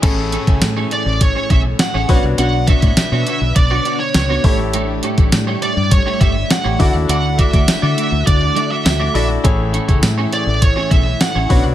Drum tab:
CC |x---------------|----------------|----------------|----------------|
HH |x-xxx-x-x-x-x-o-|x-xxx-x-x-x-x-o-|x-xxx-x-x-x-x-o-|x-xxx-x-x-x-x-o-|
TB |----x-------x---|----x-------x---|----x-------x---|----x-------x---|
SD |----o-------o---|----o-------o---|----o-------o---|----o-------o---|
BD |o--o----o-o---o-|--oo----o-----o-|---o----o-o---o-|--oo----o-------|

CC |----------------|
HH |x-xxx-x-x-x-x-o-|
TB |----x-------x---|
SD |----o-------o---|
BD |o--o----o-o---o-|